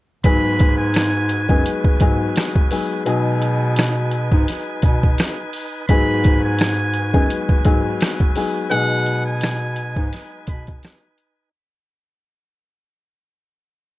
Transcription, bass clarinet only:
0.25 G#2
1.50 F#2
2.01 G#2
3.07 B2
4.32 G#2
4.83 B2
5.89 G#2
7.14 F#2
7.66 G#2
8.72 B2
9.97 G#2
10.48 B2

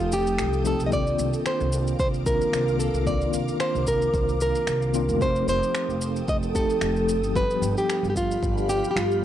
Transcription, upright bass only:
Already playing: F1
0.39 C2
0.80 C2
1.19 C2
1.61 C2
1.99 C2
2.52 C2
2.94 C2
3.33 C2
3.75 C2
4.13 C2
4.67 C2
5.09 F1
5.48 F1
5.89 F1
6.28 F1
6.82 F1
7.23 G1
7.62 G1
8.03 G1
8.43 G1
8.96 G1

